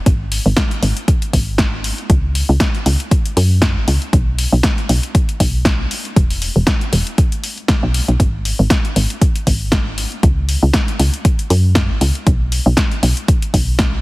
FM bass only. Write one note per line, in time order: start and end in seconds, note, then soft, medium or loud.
0.06 0.39 G#1 loud
0.46 0.54 G#1 medium
0.83 0.93 G#1 loud
1.33 1.92 G#1 loud
2.10 2.43 C#2 loud
2.49 2.57 C#2 medium
2.86 2.96 C#2 loud
3.37 3.78 F#2 medium
3.76 3.84 G#1 loud
3.88 3.98 C#2 medium
4.13 4.46 B1 loud
4.53 4.61 B1 loud
4.89 4.99 B1 loud
5.40 5.86 B1 loud
6.16 6.50 E1 loud
6.56 6.64 E1 medium
6.93 7.03 E1 loud
7.83 8.01 B1 loud
8.08 8.17 B1 medium
8.20 8.53 G#1 loud
8.59 8.67 G#1 loud
8.96 9.06 G#1 loud
9.47 10.06 G#1 loud
10.23 10.56 C#2 loud
10.63 10.71 C#2 medium
10.99 11.10 C#2 loud
11.50 11.91 F#2 medium
11.90 11.98 G#1 medium
12.01 12.11 C#2 medium
12.27 12.60 B1 loud
12.66 12.74 B1 loud
13.03 13.13 B1 loud
13.54 13.99 B1 loud